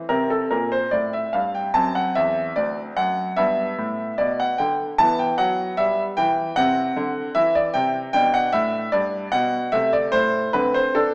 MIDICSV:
0, 0, Header, 1, 2, 480
1, 0, Start_track
1, 0, Key_signature, 1, "major"
1, 0, Tempo, 817439
1, 1028, Time_signature, 4, 2, 24, 8
1, 2460, Tempo, 790514
1, 5340, Tempo, 816327
1, 6639, End_track
2, 0, Start_track
2, 0, Title_t, "Grand piano"
2, 0, Program_c, 0, 0
2, 52, Note_on_c, 0, 70, 53
2, 57, Note_on_c, 0, 60, 29
2, 58, Note_on_c, 0, 48, 40
2, 177, Note_on_c, 0, 69, 43
2, 178, Note_off_c, 0, 70, 0
2, 252, Note_off_c, 0, 48, 0
2, 297, Note_on_c, 0, 70, 47
2, 300, Note_off_c, 0, 69, 0
2, 301, Note_on_c, 0, 46, 39
2, 420, Note_off_c, 0, 70, 0
2, 421, Note_on_c, 0, 72, 52
2, 494, Note_off_c, 0, 46, 0
2, 536, Note_on_c, 0, 74, 48
2, 542, Note_off_c, 0, 72, 0
2, 542, Note_on_c, 0, 45, 34
2, 660, Note_off_c, 0, 74, 0
2, 665, Note_on_c, 0, 76, 46
2, 736, Note_off_c, 0, 45, 0
2, 780, Note_on_c, 0, 77, 47
2, 786, Note_off_c, 0, 76, 0
2, 787, Note_on_c, 0, 43, 36
2, 905, Note_off_c, 0, 77, 0
2, 907, Note_on_c, 0, 79, 46
2, 981, Note_off_c, 0, 43, 0
2, 1003, Note_off_c, 0, 60, 0
2, 1021, Note_on_c, 0, 81, 69
2, 1025, Note_on_c, 0, 42, 50
2, 1025, Note_on_c, 0, 60, 37
2, 1028, Note_off_c, 0, 79, 0
2, 1145, Note_off_c, 0, 81, 0
2, 1146, Note_on_c, 0, 78, 56
2, 1219, Note_off_c, 0, 42, 0
2, 1265, Note_on_c, 0, 76, 61
2, 1268, Note_off_c, 0, 78, 0
2, 1270, Note_on_c, 0, 40, 44
2, 1461, Note_off_c, 0, 40, 0
2, 1482, Note_off_c, 0, 76, 0
2, 1503, Note_on_c, 0, 74, 57
2, 1508, Note_on_c, 0, 38, 39
2, 1647, Note_off_c, 0, 74, 0
2, 1698, Note_off_c, 0, 38, 0
2, 1741, Note_on_c, 0, 78, 64
2, 1744, Note_on_c, 0, 42, 46
2, 1935, Note_off_c, 0, 42, 0
2, 1959, Note_off_c, 0, 60, 0
2, 1976, Note_on_c, 0, 76, 65
2, 1982, Note_off_c, 0, 78, 0
2, 1982, Note_on_c, 0, 43, 49
2, 1982, Note_on_c, 0, 59, 32
2, 2174, Note_off_c, 0, 43, 0
2, 2221, Note_on_c, 0, 45, 42
2, 2412, Note_off_c, 0, 45, 0
2, 2454, Note_on_c, 0, 74, 55
2, 2456, Note_off_c, 0, 76, 0
2, 2458, Note_on_c, 0, 47, 44
2, 2580, Note_off_c, 0, 74, 0
2, 2586, Note_on_c, 0, 78, 58
2, 2655, Note_off_c, 0, 47, 0
2, 2698, Note_on_c, 0, 79, 57
2, 2706, Note_on_c, 0, 50, 42
2, 2707, Note_off_c, 0, 78, 0
2, 2846, Note_off_c, 0, 79, 0
2, 2900, Note_off_c, 0, 50, 0
2, 2924, Note_off_c, 0, 59, 0
2, 2943, Note_on_c, 0, 81, 84
2, 2946, Note_on_c, 0, 52, 48
2, 2947, Note_on_c, 0, 59, 38
2, 3067, Note_off_c, 0, 81, 0
2, 3069, Note_on_c, 0, 79, 57
2, 3140, Note_off_c, 0, 52, 0
2, 3182, Note_on_c, 0, 78, 67
2, 3187, Note_on_c, 0, 54, 42
2, 3190, Note_off_c, 0, 79, 0
2, 3380, Note_off_c, 0, 54, 0
2, 3421, Note_on_c, 0, 76, 64
2, 3426, Note_off_c, 0, 78, 0
2, 3428, Note_on_c, 0, 55, 45
2, 3567, Note_off_c, 0, 76, 0
2, 3620, Note_off_c, 0, 55, 0
2, 3661, Note_on_c, 0, 79, 77
2, 3667, Note_on_c, 0, 52, 51
2, 3858, Note_off_c, 0, 52, 0
2, 3882, Note_off_c, 0, 59, 0
2, 3900, Note_on_c, 0, 78, 80
2, 3903, Note_off_c, 0, 79, 0
2, 3906, Note_on_c, 0, 48, 56
2, 3907, Note_on_c, 0, 60, 39
2, 4097, Note_off_c, 0, 48, 0
2, 4145, Note_on_c, 0, 50, 52
2, 4336, Note_off_c, 0, 50, 0
2, 4377, Note_on_c, 0, 76, 70
2, 4380, Note_off_c, 0, 78, 0
2, 4382, Note_on_c, 0, 52, 46
2, 4500, Note_off_c, 0, 76, 0
2, 4502, Note_on_c, 0, 74, 61
2, 4573, Note_off_c, 0, 52, 0
2, 4614, Note_on_c, 0, 79, 72
2, 4620, Note_on_c, 0, 48, 50
2, 4621, Note_off_c, 0, 74, 0
2, 4758, Note_off_c, 0, 79, 0
2, 4810, Note_off_c, 0, 48, 0
2, 4835, Note_off_c, 0, 60, 0
2, 4854, Note_on_c, 0, 79, 86
2, 4859, Note_on_c, 0, 47, 53
2, 4859, Note_on_c, 0, 62, 41
2, 4975, Note_off_c, 0, 79, 0
2, 4978, Note_on_c, 0, 78, 69
2, 5050, Note_off_c, 0, 47, 0
2, 5093, Note_on_c, 0, 76, 68
2, 5098, Note_off_c, 0, 78, 0
2, 5100, Note_on_c, 0, 45, 47
2, 5292, Note_off_c, 0, 45, 0
2, 5312, Note_off_c, 0, 76, 0
2, 5333, Note_on_c, 0, 74, 67
2, 5339, Note_on_c, 0, 43, 47
2, 5527, Note_off_c, 0, 43, 0
2, 5547, Note_off_c, 0, 74, 0
2, 5566, Note_on_c, 0, 78, 74
2, 5573, Note_on_c, 0, 47, 57
2, 5763, Note_off_c, 0, 47, 0
2, 5787, Note_off_c, 0, 62, 0
2, 5803, Note_on_c, 0, 76, 71
2, 5807, Note_off_c, 0, 78, 0
2, 5807, Note_on_c, 0, 57, 37
2, 5808, Note_on_c, 0, 48, 51
2, 5926, Note_off_c, 0, 76, 0
2, 5926, Note_on_c, 0, 74, 63
2, 6001, Note_off_c, 0, 48, 0
2, 6037, Note_on_c, 0, 72, 71
2, 6043, Note_on_c, 0, 45, 48
2, 6048, Note_off_c, 0, 74, 0
2, 6240, Note_off_c, 0, 45, 0
2, 6262, Note_off_c, 0, 72, 0
2, 6267, Note_off_c, 0, 57, 0
2, 6281, Note_on_c, 0, 71, 64
2, 6285, Note_on_c, 0, 60, 29
2, 6286, Note_on_c, 0, 50, 43
2, 6405, Note_on_c, 0, 72, 62
2, 6408, Note_off_c, 0, 71, 0
2, 6484, Note_off_c, 0, 50, 0
2, 6525, Note_on_c, 0, 69, 60
2, 6531, Note_on_c, 0, 62, 49
2, 6532, Note_off_c, 0, 72, 0
2, 6639, Note_off_c, 0, 60, 0
2, 6639, Note_off_c, 0, 62, 0
2, 6639, Note_off_c, 0, 69, 0
2, 6639, End_track
0, 0, End_of_file